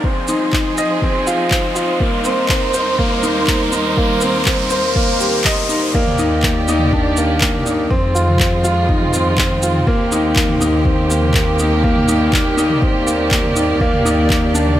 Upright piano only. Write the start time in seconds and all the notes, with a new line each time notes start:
0.04 C4
0.29 D#4
0.54 D#4
0.78 D#5
1.03 C4
1.27 F4
1.51 C4
1.75 F4
2.00 A#3
2.25 C4
2.50 C4
2.74 C5
2.99 A#3
3.23 D#4
3.48 A#3
3.73 D#4
3.97 A#3
4.22 C4
4.46 C4
4.71 C5
4.96 A#3
5.20 G4
5.45 D#5
5.69 D#4
5.95 A#3
6.19 D#4
6.44 A#3
6.68 D#4
6.93 D4
7.17 A#3
7.41 A#3
7.66 D#4
7.90 C4
8.15 F4
8.39 C4
8.64 F4
8.89 D#4
9.13 C4
9.38 C4
9.63 F4
9.87 A#3
10.12 D#4
10.37 A#3
10.61 D#4
10.85 C4
11.10 A#3
11.35 A#3
11.60 D#4
11.84 A#3
12.08 D#4
12.33 A#3
12.57 D#4
12.82 C4
13.07 A#3
13.31 A#3
13.56 D#4
13.81 A#3
14.05 D#4
14.30 A#3
14.54 D4